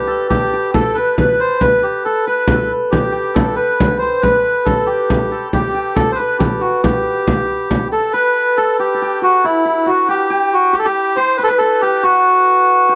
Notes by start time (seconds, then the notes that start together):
Already playing: G4 B4 D5
0.07 A4
0.30 G4, frame drum
0.53 G4
0.74 A4, frame drum
0.95 B4, frame drum
1.17 B4, frame drum
1.40 C5
1.60 B4, frame drum
1.83 G4, frame drum
2.05 A4
2.26 B4
2.48 frame drum
2.54 A4
2.71 frame drum
2.91 G4, frame drum
3.12 G4
3.34 A4, frame drum
3.56 B4, frame drum
3.80 frame drum
3.98 C5
4.21 B4, frame drum
4.65 A4, frame drum
4.86 G4, frame drum
5.10 frame drum
5.32 A4
5.53 G4, frame drum
5.74 G4
5.95 A4, frame drum
6.12 B4 C5
6.18 B4, frame drum
6.39 G4, frame drum
6.60 F#4
6.83 G4, frame drum
7.27 frame drum
7.71 frame drum
7.92 A4, frame drum
8.13 B4
8.57 A4
8.79 G4
8.94 A4
9.02 G4
9.22 F#4
9.44 E4
9.65 E4
9.86 F#4
10.09 G4
10.30 G4
10.53 F#4
10.73 G4
10.79 A4
10.85 G4
11.16 C5
11.37 B4
11.43 A4 B4
11.50 B4
11.58 A4
11.81 G4
12.03 F#4
12.89 G4